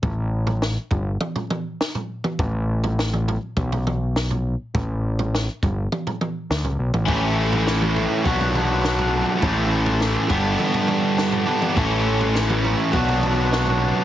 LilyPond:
<<
  \new Staff \with { instrumentName = "Overdriven electric guitar" } { \time 4/4 \key a \mixolydian \tempo 4 = 102 r1 | r1 | r1 | <e a cis' g'>2 <fis b d' fis'>2 |
<e a cis' g'>4. <b d' g'>2~ <b d' g'>8 | <e a cis' g'>2 <b d' fis'>2 | }
  \new Staff \with { instrumentName = "Distorted electric guitar" } { \time 4/4 \key a \mixolydian r1 | r1 | r1 | <a, e a cis' e'>2 <b, fis b d' fis'>2 |
<a, e a cis' e'>4. <g, d g b d'>2 <g, d g b d'>8 | <a, e a cis' e'>2 <b, fis b d' fis'>2 | }
  \new Staff \with { instrumentName = "Picked electric bass" } { \clef bass \time 4/4 \key a \mixolydian a,,4. g,,8 r2 | a,,2 b,,2 | a,,4. g,,8 r4 d,16 cis,16 b,,16 a,,16 | a,,2 b,,2 |
a,,4. g,,8 r2 | a,,2 b,,2 | }
  \new DrumStaff \with { instrumentName = "Drums" } \drummode { \time 4/4 <bd tomfh>8. tomfh16 sn8 <bd tomfh>8 toml16 tomfh16 toml8 sn16 tomfh8 toml16 | <bd tomfh>8. tomfh16 sn16 toml16 tomfh8 <bd toml>16 tomfh16 toml8 sn16 tomfh8. | <bd tomfh>8. tomfh16 sn8 <bd tomfh>8 toml16 tomfh16 toml8 sn16 tomfh8 toml16 | <bd tomfh>8. tomfh16 sn16 toml16 tomfh8 <bd toml>16 tomfh16 toml8 sn16 tomfh8. |
<bd tomfh>8. tomfh16 sn8 <bd tomfh>8 toml16 tomfh16 toml8 sn16 tomfh8 toml16 | <bd tomfh>8. tomfh16 sn16 toml16 tomfh8 <bd toml>16 tomfh16 toml8 sn16 tomfh8. | }
>>